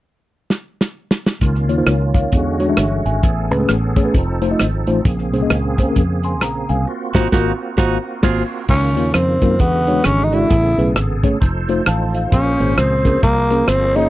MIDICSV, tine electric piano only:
0, 0, Header, 1, 2, 480
1, 0, Start_track
1, 0, Key_signature, -5, "major"
1, 0, Tempo, 454890
1, 1487, Time_signature, 4, 2, 24, 8
1, 14868, End_track
2, 0, Start_track
2, 0, Title_t, "Tine electric piano"
2, 0, Program_c, 0, 4
2, 1493, Note_on_c, 0, 49, 70
2, 1785, Note_on_c, 0, 58, 73
2, 1786, Note_on_c, 0, 65, 60
2, 1786, Note_on_c, 0, 73, 71
2, 1787, Note_on_c, 0, 63, 57
2, 1844, Note_off_c, 0, 58, 0
2, 1845, Note_off_c, 0, 63, 0
2, 1845, Note_off_c, 0, 65, 0
2, 1845, Note_off_c, 0, 73, 0
2, 1876, Note_on_c, 0, 58, 68
2, 1878, Note_on_c, 0, 65, 61
2, 1879, Note_on_c, 0, 63, 59
2, 1881, Note_on_c, 0, 72, 75
2, 1971, Note_on_c, 0, 73, 60
2, 1972, Note_off_c, 0, 72, 0
2, 1973, Note_on_c, 0, 70, 55
2, 2016, Note_off_c, 0, 58, 0
2, 2017, Note_off_c, 0, 65, 0
2, 2018, Note_off_c, 0, 63, 0
2, 2220, Note_off_c, 0, 49, 0
2, 2246, Note_off_c, 0, 73, 0
2, 2247, Note_off_c, 0, 70, 0
2, 2261, Note_on_c, 0, 77, 60
2, 2267, Note_on_c, 0, 73, 57
2, 2456, Note_on_c, 0, 52, 70
2, 2717, Note_off_c, 0, 77, 0
2, 2720, Note_off_c, 0, 73, 0
2, 2740, Note_on_c, 0, 56, 84
2, 2742, Note_on_c, 0, 62, 70
2, 2743, Note_on_c, 0, 66, 75
2, 2746, Note_on_c, 0, 73, 92
2, 2803, Note_off_c, 0, 56, 0
2, 2803, Note_off_c, 0, 62, 0
2, 2804, Note_off_c, 0, 66, 0
2, 2805, Note_off_c, 0, 73, 0
2, 2841, Note_on_c, 0, 62, 69
2, 2842, Note_on_c, 0, 56, 74
2, 2844, Note_on_c, 0, 66, 61
2, 2845, Note_on_c, 0, 76, 74
2, 2919, Note_off_c, 0, 76, 0
2, 2931, Note_on_c, 0, 76, 59
2, 2936, Note_on_c, 0, 73, 56
2, 2979, Note_off_c, 0, 62, 0
2, 2980, Note_off_c, 0, 56, 0
2, 2981, Note_off_c, 0, 66, 0
2, 3182, Note_off_c, 0, 52, 0
2, 3207, Note_off_c, 0, 76, 0
2, 3209, Note_off_c, 0, 73, 0
2, 3226, Note_on_c, 0, 80, 63
2, 3234, Note_on_c, 0, 76, 55
2, 3417, Note_on_c, 0, 45, 68
2, 3680, Note_off_c, 0, 80, 0
2, 3684, Note_off_c, 0, 76, 0
2, 3702, Note_on_c, 0, 61, 66
2, 3705, Note_on_c, 0, 68, 67
2, 3706, Note_on_c, 0, 57, 69
2, 3706, Note_on_c, 0, 71, 85
2, 3764, Note_off_c, 0, 61, 0
2, 3765, Note_off_c, 0, 68, 0
2, 3766, Note_off_c, 0, 57, 0
2, 3766, Note_off_c, 0, 71, 0
2, 3798, Note_on_c, 0, 61, 63
2, 3799, Note_on_c, 0, 57, 67
2, 3799, Note_on_c, 0, 68, 56
2, 3802, Note_on_c, 0, 71, 76
2, 3938, Note_off_c, 0, 61, 0
2, 3939, Note_off_c, 0, 57, 0
2, 3939, Note_off_c, 0, 68, 0
2, 3940, Note_off_c, 0, 71, 0
2, 4142, Note_off_c, 0, 45, 0
2, 4184, Note_on_c, 0, 61, 70
2, 4186, Note_on_c, 0, 57, 77
2, 4186, Note_on_c, 0, 73, 81
2, 4187, Note_on_c, 0, 68, 72
2, 4245, Note_off_c, 0, 61, 0
2, 4246, Note_off_c, 0, 57, 0
2, 4246, Note_off_c, 0, 73, 0
2, 4247, Note_off_c, 0, 68, 0
2, 4268, Note_on_c, 0, 57, 65
2, 4273, Note_on_c, 0, 61, 62
2, 4275, Note_on_c, 0, 68, 61
2, 4275, Note_on_c, 0, 71, 73
2, 4367, Note_off_c, 0, 57, 0
2, 4369, Note_off_c, 0, 61, 0
2, 4370, Note_off_c, 0, 68, 0
2, 4370, Note_off_c, 0, 71, 0
2, 4659, Note_on_c, 0, 57, 83
2, 4660, Note_on_c, 0, 63, 69
2, 4661, Note_on_c, 0, 65, 68
2, 4664, Note_on_c, 0, 72, 95
2, 4723, Note_off_c, 0, 57, 0
2, 4723, Note_off_c, 0, 63, 0
2, 4724, Note_off_c, 0, 65, 0
2, 4725, Note_off_c, 0, 72, 0
2, 4757, Note_on_c, 0, 57, 71
2, 4761, Note_on_c, 0, 63, 72
2, 4761, Note_on_c, 0, 65, 66
2, 4764, Note_on_c, 0, 75, 76
2, 4898, Note_off_c, 0, 57, 0
2, 4900, Note_off_c, 0, 63, 0
2, 4900, Note_off_c, 0, 65, 0
2, 4902, Note_off_c, 0, 75, 0
2, 5144, Note_on_c, 0, 57, 84
2, 5145, Note_on_c, 0, 63, 74
2, 5145, Note_on_c, 0, 65, 77
2, 5145, Note_on_c, 0, 72, 90
2, 5268, Note_off_c, 0, 57, 0
2, 5268, Note_off_c, 0, 63, 0
2, 5268, Note_off_c, 0, 65, 0
2, 5268, Note_off_c, 0, 72, 0
2, 5338, Note_on_c, 0, 46, 63
2, 5627, Note_on_c, 0, 58, 70
2, 5628, Note_on_c, 0, 61, 69
2, 5629, Note_on_c, 0, 68, 63
2, 5631, Note_on_c, 0, 72, 77
2, 5687, Note_off_c, 0, 58, 0
2, 5688, Note_off_c, 0, 61, 0
2, 5688, Note_off_c, 0, 68, 0
2, 5689, Note_off_c, 0, 72, 0
2, 5719, Note_on_c, 0, 58, 70
2, 5722, Note_on_c, 0, 61, 66
2, 5723, Note_on_c, 0, 75, 70
2, 5724, Note_on_c, 0, 68, 65
2, 5859, Note_off_c, 0, 58, 0
2, 5861, Note_off_c, 0, 61, 0
2, 5861, Note_off_c, 0, 75, 0
2, 5862, Note_off_c, 0, 68, 0
2, 6063, Note_off_c, 0, 46, 0
2, 6108, Note_on_c, 0, 58, 74
2, 6112, Note_on_c, 0, 61, 63
2, 6112, Note_on_c, 0, 68, 70
2, 6114, Note_on_c, 0, 72, 77
2, 6168, Note_off_c, 0, 58, 0
2, 6169, Note_off_c, 0, 61, 0
2, 6169, Note_off_c, 0, 68, 0
2, 6170, Note_off_c, 0, 72, 0
2, 6205, Note_on_c, 0, 58, 60
2, 6205, Note_on_c, 0, 68, 64
2, 6208, Note_on_c, 0, 61, 59
2, 6209, Note_on_c, 0, 70, 74
2, 6342, Note_off_c, 0, 58, 0
2, 6342, Note_off_c, 0, 68, 0
2, 6344, Note_off_c, 0, 61, 0
2, 6344, Note_off_c, 0, 70, 0
2, 6591, Note_on_c, 0, 84, 59
2, 6599, Note_on_c, 0, 80, 51
2, 6766, Note_off_c, 0, 84, 0
2, 6770, Note_off_c, 0, 80, 0
2, 6773, Note_on_c, 0, 82, 63
2, 7048, Note_off_c, 0, 82, 0
2, 7064, Note_on_c, 0, 80, 65
2, 7070, Note_on_c, 0, 77, 55
2, 7243, Note_off_c, 0, 80, 0
2, 7246, Note_off_c, 0, 77, 0
2, 7543, Note_on_c, 0, 58, 85
2, 7546, Note_on_c, 0, 65, 85
2, 7547, Note_on_c, 0, 66, 81
2, 7549, Note_on_c, 0, 72, 88
2, 7671, Note_off_c, 0, 58, 0
2, 7673, Note_off_c, 0, 65, 0
2, 7673, Note_off_c, 0, 66, 0
2, 7674, Note_off_c, 0, 72, 0
2, 7731, Note_on_c, 0, 58, 88
2, 7733, Note_on_c, 0, 70, 90
2, 7734, Note_on_c, 0, 65, 94
2, 7734, Note_on_c, 0, 66, 95
2, 7928, Note_off_c, 0, 58, 0
2, 7930, Note_off_c, 0, 65, 0
2, 7930, Note_off_c, 0, 66, 0
2, 7930, Note_off_c, 0, 70, 0
2, 8207, Note_on_c, 0, 58, 92
2, 8209, Note_on_c, 0, 65, 94
2, 8211, Note_on_c, 0, 66, 97
2, 8213, Note_on_c, 0, 72, 90
2, 8406, Note_off_c, 0, 58, 0
2, 8407, Note_off_c, 0, 65, 0
2, 8409, Note_off_c, 0, 66, 0
2, 8410, Note_off_c, 0, 72, 0
2, 8688, Note_on_c, 0, 58, 89
2, 8692, Note_on_c, 0, 65, 78
2, 8693, Note_on_c, 0, 66, 89
2, 8694, Note_on_c, 0, 72, 86
2, 8886, Note_off_c, 0, 58, 0
2, 8889, Note_off_c, 0, 65, 0
2, 8889, Note_off_c, 0, 66, 0
2, 8890, Note_off_c, 0, 72, 0
2, 9176, Note_on_c, 0, 49, 51
2, 9460, Note_on_c, 0, 63, 52
2, 9462, Note_on_c, 0, 58, 65
2, 9462, Note_on_c, 0, 73, 62
2, 9463, Note_on_c, 0, 65, 57
2, 9585, Note_off_c, 0, 63, 0
2, 9586, Note_off_c, 0, 58, 0
2, 9586, Note_off_c, 0, 73, 0
2, 9587, Note_off_c, 0, 65, 0
2, 9901, Note_off_c, 0, 49, 0
2, 9943, Note_on_c, 0, 58, 72
2, 9944, Note_on_c, 0, 63, 58
2, 9944, Note_on_c, 0, 65, 56
2, 9945, Note_on_c, 0, 70, 76
2, 10067, Note_off_c, 0, 58, 0
2, 10067, Note_off_c, 0, 63, 0
2, 10067, Note_off_c, 0, 65, 0
2, 10068, Note_off_c, 0, 70, 0
2, 10132, Note_on_c, 0, 52, 58
2, 10425, Note_on_c, 0, 62, 61
2, 10428, Note_on_c, 0, 73, 82
2, 10429, Note_on_c, 0, 56, 74
2, 10429, Note_on_c, 0, 66, 61
2, 10547, Note_off_c, 0, 62, 0
2, 10549, Note_off_c, 0, 56, 0
2, 10549, Note_off_c, 0, 66, 0
2, 10549, Note_off_c, 0, 73, 0
2, 10858, Note_off_c, 0, 52, 0
2, 10895, Note_on_c, 0, 56, 72
2, 10898, Note_on_c, 0, 62, 62
2, 10898, Note_on_c, 0, 66, 63
2, 10899, Note_on_c, 0, 74, 70
2, 11022, Note_off_c, 0, 56, 0
2, 11023, Note_off_c, 0, 62, 0
2, 11023, Note_off_c, 0, 66, 0
2, 11024, Note_off_c, 0, 74, 0
2, 11090, Note_on_c, 0, 45, 56
2, 11380, Note_on_c, 0, 57, 61
2, 11380, Note_on_c, 0, 61, 51
2, 11381, Note_on_c, 0, 68, 55
2, 11384, Note_on_c, 0, 71, 71
2, 11504, Note_off_c, 0, 57, 0
2, 11504, Note_off_c, 0, 61, 0
2, 11504, Note_off_c, 0, 68, 0
2, 11506, Note_off_c, 0, 71, 0
2, 11816, Note_off_c, 0, 45, 0
2, 11855, Note_on_c, 0, 61, 74
2, 11856, Note_on_c, 0, 57, 76
2, 11859, Note_on_c, 0, 68, 65
2, 11859, Note_on_c, 0, 73, 84
2, 11981, Note_off_c, 0, 61, 0
2, 11982, Note_off_c, 0, 57, 0
2, 11983, Note_off_c, 0, 68, 0
2, 11983, Note_off_c, 0, 73, 0
2, 12338, Note_on_c, 0, 57, 86
2, 12338, Note_on_c, 0, 63, 76
2, 12339, Note_on_c, 0, 65, 83
2, 12342, Note_on_c, 0, 72, 100
2, 12462, Note_off_c, 0, 57, 0
2, 12462, Note_off_c, 0, 63, 0
2, 12462, Note_off_c, 0, 65, 0
2, 12464, Note_off_c, 0, 72, 0
2, 12529, Note_on_c, 0, 81, 64
2, 12535, Note_on_c, 0, 77, 54
2, 12803, Note_off_c, 0, 81, 0
2, 12806, Note_off_c, 0, 77, 0
2, 12822, Note_on_c, 0, 77, 61
2, 13009, Note_on_c, 0, 46, 57
2, 13274, Note_off_c, 0, 77, 0
2, 13296, Note_on_c, 0, 61, 59
2, 13297, Note_on_c, 0, 58, 63
2, 13298, Note_on_c, 0, 68, 61
2, 13298, Note_on_c, 0, 72, 75
2, 13420, Note_off_c, 0, 58, 0
2, 13420, Note_off_c, 0, 61, 0
2, 13421, Note_off_c, 0, 68, 0
2, 13421, Note_off_c, 0, 72, 0
2, 13733, Note_off_c, 0, 46, 0
2, 13767, Note_on_c, 0, 58, 63
2, 13768, Note_on_c, 0, 61, 66
2, 13773, Note_on_c, 0, 70, 79
2, 13774, Note_on_c, 0, 68, 63
2, 13895, Note_off_c, 0, 58, 0
2, 13896, Note_off_c, 0, 61, 0
2, 13898, Note_off_c, 0, 68, 0
2, 13898, Note_off_c, 0, 70, 0
2, 14253, Note_on_c, 0, 58, 69
2, 14254, Note_on_c, 0, 68, 66
2, 14255, Note_on_c, 0, 61, 67
2, 14255, Note_on_c, 0, 70, 75
2, 14378, Note_off_c, 0, 58, 0
2, 14378, Note_off_c, 0, 61, 0
2, 14378, Note_off_c, 0, 68, 0
2, 14378, Note_off_c, 0, 70, 0
2, 14734, Note_on_c, 0, 61, 70
2, 14735, Note_on_c, 0, 58, 73
2, 14737, Note_on_c, 0, 68, 67
2, 14737, Note_on_c, 0, 73, 84
2, 14857, Note_off_c, 0, 61, 0
2, 14858, Note_off_c, 0, 58, 0
2, 14859, Note_off_c, 0, 68, 0
2, 14859, Note_off_c, 0, 73, 0
2, 14868, End_track
0, 0, End_of_file